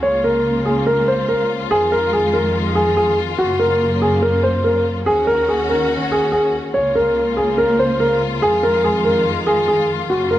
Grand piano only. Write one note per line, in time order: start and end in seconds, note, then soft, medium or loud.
0.03 0.22 C#5 medium
0.24 0.63 A#4 medium
0.65 0.85 G#4 medium
0.87 1.06 A#4 medium
1.08 1.27 C5 medium
1.29 1.48 A#4 medium
1.71 1.90 G#4 loud
1.92 2.11 A#4 medium
2.13 2.32 G#4 medium
2.34 2.53 A#4 medium
2.75 2.95 G#4 medium
2.97 3.16 G#4 medium
3.38 3.58 F#4 medium
3.59 3.99 A#4 medium
4.02 4.21 G#4 medium
4.22 4.42 A#4 medium
4.43 4.63 C5 medium
4.64 4.83 A#4 medium
5.06 5.25 G#4 loud
5.27 5.46 A#4 medium
5.48 5.67 G#4 medium
5.70 5.89 A#4 medium
6.12 6.30 G#4 medium
6.32 6.51 G#4 medium
6.74 6.93 C#5 medium
6.95 7.35 A#4 medium
7.37 7.56 G#4 medium
7.58 7.77 A#4 medium
7.79 7.98 C5 medium
8.00 8.19 A#4 medium
8.42 8.61 G#4 loud
8.63 8.82 A#4 medium
8.84 9.03 G#4 medium
9.05 9.24 A#4 medium
9.47 9.66 G#4 medium
9.68 9.87 G#4 medium
10.10 10.29 F#4 medium
10.31 10.39 A#4 medium